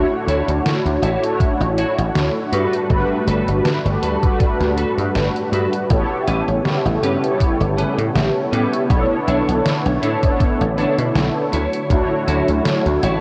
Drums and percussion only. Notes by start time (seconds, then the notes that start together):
0.28 closed hi-hat
0.48 closed hi-hat
0.66 snare, closed hi-hat
0.86 closed hi-hat
1.03 closed hi-hat
1.24 closed hi-hat
1.40 kick, closed hi-hat
1.61 closed hi-hat
1.78 closed hi-hat
1.98 closed hi-hat
2.15 snare, closed hi-hat
2.53 closed hi-hat
2.73 closed hi-hat
2.90 kick, closed hi-hat
3.28 closed hi-hat
3.48 closed hi-hat
3.65 snare, closed hi-hat
3.86 closed hi-hat
4.03 closed hi-hat
4.23 kick, closed hi-hat
4.40 kick, closed hi-hat
4.61 snare, closed hi-hat
4.78 closed hi-hat
4.98 closed hi-hat
5.15 snare, closed hi-hat
5.36 closed hi-hat
5.53 closed hi-hat
5.73 closed hi-hat
5.90 kick, closed hi-hat
6.28 closed hi-hat
6.48 closed hi-hat
6.65 snare, closed hi-hat
6.86 closed hi-hat
7.03 closed hi-hat
7.24 closed hi-hat
7.40 kick, closed hi-hat
7.61 closed hi-hat
7.78 closed hi-hat
7.99 closed hi-hat
8.16 snare, closed hi-hat
8.53 closed hi-hat
8.74 closed hi-hat
8.90 kick, closed hi-hat
9.28 closed hi-hat
9.49 closed hi-hat
9.66 snare, closed hi-hat
9.86 closed hi-hat
10.03 closed hi-hat
10.23 kick, closed hi-hat
10.40 kick, closed hi-hat
10.61 closed hi-hat
10.78 closed hi-hat
10.98 closed hi-hat
11.15 snare, closed hi-hat
11.53 closed hi-hat
11.73 closed hi-hat
11.90 kick, closed hi-hat
12.28 closed hi-hat
12.48 closed hi-hat
12.65 snare, closed hi-hat
12.86 closed hi-hat
13.03 closed hi-hat